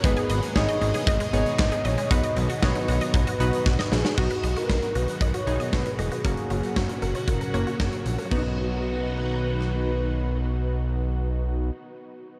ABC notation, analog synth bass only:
X:1
M:4/4
L:1/16
Q:1/4=116
K:B
V:1 name="Analog synth bass" clef=bass
G,,, z G,,, z G,,, z G,,, z G,,, z G,,, z G,,, z A,,, z | B,,, z B,,, z B,,, z B,,, z B,,, z B,,, z B,,, z A,,, z | B,,, z B,,, z B,,, z B,,, z B,,, z B,,, z B,,, z E,,, z | F,,, z F,,, z F,,, z F,,, z F,,, z F,,, z F,,, z A,,, z |
B,,,16- | B,,,16 |]